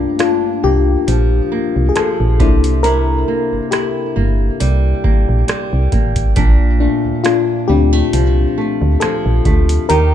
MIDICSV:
0, 0, Header, 1, 5, 480
1, 0, Start_track
1, 0, Tempo, 882353
1, 1544, Time_signature, 4, 2, 24, 8
1, 5519, End_track
2, 0, Start_track
2, 0, Title_t, "FM electric piano"
2, 0, Program_c, 0, 5
2, 0, Control_c, 0, 64, 127
2, 0, Note_on_c, 0, 57, 51
2, 0, Note_on_c, 0, 58, 48
2, 0, Note_on_c, 0, 62, 72
2, 0, Note_on_c, 0, 65, 61
2, 100, Note_off_c, 0, 65, 0
2, 107, Note_on_c, 0, 65, 87
2, 112, Note_off_c, 0, 62, 0
2, 324, Note_off_c, 0, 57, 0
2, 325, Note_off_c, 0, 58, 0
2, 329, Note_off_c, 0, 65, 0
2, 348, Note_on_c, 0, 67, 98
2, 804, Note_off_c, 0, 67, 0
2, 1028, Note_on_c, 0, 68, 73
2, 1063, Note_off_c, 0, 68, 0
2, 1065, Note_on_c, 0, 69, 92
2, 1307, Note_on_c, 0, 58, 56
2, 1311, Note_on_c, 0, 62, 52
2, 1312, Control_c, 0, 64, 0
2, 1314, Note_on_c, 0, 64, 60
2, 1399, Control_c, 0, 64, 127
2, 1540, Note_on_c, 0, 70, 108
2, 1559, Note_off_c, 0, 69, 0
2, 2004, Note_off_c, 0, 58, 0
2, 2006, Note_off_c, 0, 62, 0
2, 2007, Note_off_c, 0, 64, 0
2, 2019, Note_on_c, 0, 67, 77
2, 2036, Note_off_c, 0, 70, 0
2, 3200, Note_off_c, 0, 67, 0
2, 3472, Control_c, 0, 64, 0
2, 3555, Control_c, 0, 64, 127
2, 3700, Note_on_c, 0, 62, 69
2, 3937, Note_on_c, 0, 65, 89
2, 3949, Note_off_c, 0, 62, 0
2, 4176, Note_on_c, 0, 67, 97
2, 4180, Note_on_c, 0, 57, 56
2, 4184, Note_on_c, 0, 60, 52
2, 4187, Note_on_c, 0, 62, 64
2, 4188, Note_off_c, 0, 65, 0
2, 4508, Note_off_c, 0, 57, 0
2, 4510, Note_off_c, 0, 60, 0
2, 4512, Note_off_c, 0, 62, 0
2, 4638, Note_off_c, 0, 67, 0
2, 4897, Note_on_c, 0, 69, 93
2, 5380, Note_on_c, 0, 70, 111
2, 5390, Control_c, 0, 64, 0
2, 5395, Note_off_c, 0, 69, 0
2, 5483, Control_c, 0, 64, 127
2, 5519, Note_off_c, 0, 70, 0
2, 5519, End_track
3, 0, Start_track
3, 0, Title_t, "Nylon-string guitar"
3, 0, Program_c, 1, 24
3, 0, Note_on_c, 1, 43, 73
3, 0, Note_on_c, 1, 58, 54
3, 0, Note_on_c, 1, 62, 65
3, 96, Note_off_c, 1, 62, 0
3, 103, Note_on_c, 1, 62, 64
3, 343, Note_off_c, 1, 58, 0
3, 345, Note_on_c, 1, 58, 58
3, 585, Note_on_c, 1, 53, 58
3, 824, Note_off_c, 1, 58, 0
3, 826, Note_on_c, 1, 58, 61
3, 1058, Note_off_c, 1, 53, 0
3, 1064, Note_on_c, 1, 53, 60
3, 1303, Note_on_c, 1, 48, 77
3, 1355, Note_off_c, 1, 62, 0
3, 1356, Note_off_c, 1, 43, 0
3, 1356, Note_off_c, 1, 53, 0
3, 1538, Note_off_c, 1, 48, 0
3, 1545, Note_on_c, 1, 48, 75
3, 1547, Note_on_c, 1, 64, 63
3, 1561, Note_off_c, 1, 58, 0
3, 1784, Note_on_c, 1, 58, 57
3, 2016, Note_off_c, 1, 64, 0
3, 2023, Note_on_c, 1, 64, 70
3, 2260, Note_off_c, 1, 58, 0
3, 2262, Note_on_c, 1, 58, 55
3, 2503, Note_on_c, 1, 55, 63
3, 2739, Note_off_c, 1, 58, 0
3, 2741, Note_on_c, 1, 58, 59
3, 2974, Note_off_c, 1, 55, 0
3, 2981, Note_on_c, 1, 55, 64
3, 3219, Note_off_c, 1, 58, 0
3, 3221, Note_on_c, 1, 58, 59
3, 3459, Note_off_c, 1, 48, 0
3, 3461, Note_on_c, 1, 46, 82
3, 3463, Note_off_c, 1, 64, 0
3, 3465, Note_on_c, 1, 62, 67
3, 3514, Note_off_c, 1, 55, 0
3, 3701, Note_off_c, 1, 58, 0
3, 3703, Note_on_c, 1, 57, 59
3, 3941, Note_off_c, 1, 62, 0
3, 3943, Note_on_c, 1, 62, 65
3, 4182, Note_off_c, 1, 57, 0
3, 4184, Note_on_c, 1, 55, 60
3, 4311, Note_off_c, 1, 55, 0
3, 4311, Note_on_c, 1, 57, 49
3, 4424, Note_on_c, 1, 53, 61
3, 4659, Note_off_c, 1, 57, 0
3, 4665, Note_on_c, 1, 57, 60
3, 4898, Note_off_c, 1, 53, 0
3, 4904, Note_on_c, 1, 53, 61
3, 5139, Note_off_c, 1, 57, 0
3, 5145, Note_on_c, 1, 57, 63
3, 5381, Note_off_c, 1, 53, 0
3, 5383, Note_off_c, 1, 46, 0
3, 5383, Note_on_c, 1, 51, 82
3, 5386, Note_on_c, 1, 67, 69
3, 5437, Note_off_c, 1, 57, 0
3, 5519, Note_off_c, 1, 51, 0
3, 5519, Note_off_c, 1, 62, 0
3, 5519, Note_off_c, 1, 67, 0
3, 5519, End_track
4, 0, Start_track
4, 0, Title_t, "FM bass"
4, 0, Program_c, 2, 39
4, 348, Note_on_c, 2, 36, 79
4, 527, Note_off_c, 2, 36, 0
4, 587, Note_on_c, 2, 34, 88
4, 767, Note_off_c, 2, 34, 0
4, 959, Note_on_c, 2, 36, 78
4, 1040, Note_off_c, 2, 36, 0
4, 1197, Note_on_c, 2, 34, 92
4, 1308, Note_on_c, 2, 36, 96
4, 1316, Note_off_c, 2, 34, 0
4, 1766, Note_off_c, 2, 36, 0
4, 1918, Note_on_c, 2, 31, 51
4, 1961, Note_off_c, 2, 31, 0
4, 2268, Note_on_c, 2, 31, 90
4, 2448, Note_off_c, 2, 31, 0
4, 2510, Note_on_c, 2, 36, 85
4, 2689, Note_off_c, 2, 36, 0
4, 2878, Note_on_c, 2, 34, 91
4, 2960, Note_off_c, 2, 34, 0
4, 3117, Note_on_c, 2, 36, 94
4, 3199, Note_off_c, 2, 36, 0
4, 3224, Note_on_c, 2, 33, 85
4, 3405, Note_off_c, 2, 33, 0
4, 3464, Note_on_c, 2, 34, 111
4, 3743, Note_off_c, 2, 34, 0
4, 3836, Note_on_c, 2, 38, 47
4, 3880, Note_off_c, 2, 38, 0
4, 4187, Note_on_c, 2, 38, 89
4, 4367, Note_off_c, 2, 38, 0
4, 4426, Note_on_c, 2, 36, 87
4, 4606, Note_off_c, 2, 36, 0
4, 4796, Note_on_c, 2, 38, 92
4, 4878, Note_off_c, 2, 38, 0
4, 5036, Note_on_c, 2, 34, 96
4, 5118, Note_off_c, 2, 34, 0
4, 5144, Note_on_c, 2, 38, 91
4, 5325, Note_off_c, 2, 38, 0
4, 5387, Note_on_c, 2, 39, 109
4, 5519, Note_off_c, 2, 39, 0
4, 5519, End_track
5, 0, Start_track
5, 0, Title_t, "Drums"
5, 104, Note_on_c, 9, 42, 56
5, 110, Note_on_c, 9, 37, 107
5, 159, Note_off_c, 9, 42, 0
5, 165, Note_off_c, 9, 37, 0
5, 587, Note_on_c, 9, 42, 69
5, 641, Note_off_c, 9, 42, 0
5, 1064, Note_on_c, 9, 42, 69
5, 1070, Note_on_c, 9, 37, 106
5, 1118, Note_off_c, 9, 42, 0
5, 1124, Note_off_c, 9, 37, 0
5, 1305, Note_on_c, 9, 36, 104
5, 1306, Note_on_c, 9, 42, 42
5, 1360, Note_off_c, 9, 36, 0
5, 1360, Note_off_c, 9, 42, 0
5, 1436, Note_on_c, 9, 42, 66
5, 1490, Note_off_c, 9, 42, 0
5, 1546, Note_on_c, 9, 42, 63
5, 1600, Note_off_c, 9, 42, 0
5, 2024, Note_on_c, 9, 42, 63
5, 2030, Note_on_c, 9, 37, 100
5, 2078, Note_off_c, 9, 42, 0
5, 2085, Note_off_c, 9, 37, 0
5, 2505, Note_on_c, 9, 42, 66
5, 2559, Note_off_c, 9, 42, 0
5, 2744, Note_on_c, 9, 36, 88
5, 2798, Note_off_c, 9, 36, 0
5, 2983, Note_on_c, 9, 42, 68
5, 2988, Note_on_c, 9, 37, 107
5, 3037, Note_off_c, 9, 42, 0
5, 3043, Note_off_c, 9, 37, 0
5, 3221, Note_on_c, 9, 42, 43
5, 3222, Note_on_c, 9, 36, 85
5, 3276, Note_off_c, 9, 42, 0
5, 3277, Note_off_c, 9, 36, 0
5, 3350, Note_on_c, 9, 42, 67
5, 3353, Note_on_c, 9, 36, 83
5, 3405, Note_off_c, 9, 42, 0
5, 3407, Note_off_c, 9, 36, 0
5, 3460, Note_on_c, 9, 42, 64
5, 3462, Note_on_c, 9, 36, 115
5, 3514, Note_off_c, 9, 42, 0
5, 3517, Note_off_c, 9, 36, 0
5, 3941, Note_on_c, 9, 42, 59
5, 3948, Note_on_c, 9, 37, 104
5, 3996, Note_off_c, 9, 42, 0
5, 4002, Note_off_c, 9, 37, 0
5, 4425, Note_on_c, 9, 42, 71
5, 4479, Note_off_c, 9, 42, 0
5, 4903, Note_on_c, 9, 42, 68
5, 4909, Note_on_c, 9, 37, 116
5, 4957, Note_off_c, 9, 42, 0
5, 4963, Note_off_c, 9, 37, 0
5, 5143, Note_on_c, 9, 36, 77
5, 5143, Note_on_c, 9, 42, 44
5, 5197, Note_off_c, 9, 36, 0
5, 5197, Note_off_c, 9, 42, 0
5, 5272, Note_on_c, 9, 42, 70
5, 5327, Note_off_c, 9, 42, 0
5, 5383, Note_on_c, 9, 42, 64
5, 5438, Note_off_c, 9, 42, 0
5, 5519, End_track
0, 0, End_of_file